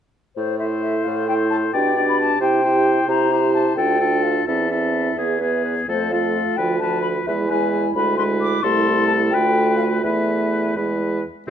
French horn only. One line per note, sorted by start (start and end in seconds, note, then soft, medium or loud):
0.60 1.28 E4 soft
1.29 1.73 E4 soft
1.74 1.96 D4 soft
1.97 2.40 D4 soft
2.41 2.63 E4 soft
2.64 3.08 E4 soft
3.09 3.31 E4 soft
3.32 3.77 E4 soft
3.77 4.00 D4 soft
4.00 4.46 D4 soft
4.47 4.70 C4 soft
4.71 5.17 C4 soft
5.18 5.41 B3 soft
5.41 5.88 B3 soft
5.89 6.12 A3 soft
6.12 6.58 A3 soft
6.59 6.81 F3 soft
6.82 7.14 F3 soft
7.27 7.50 G#3 soft
7.51 7.95 G#3 soft
7.97 8.18 G#3 soft
8.19 8.63 G#3 soft
8.65 9.29 A3 medium
9.34 10.03 A3 soft
10.04 10.78 A3 soft
10.77 11.24 G#3 soft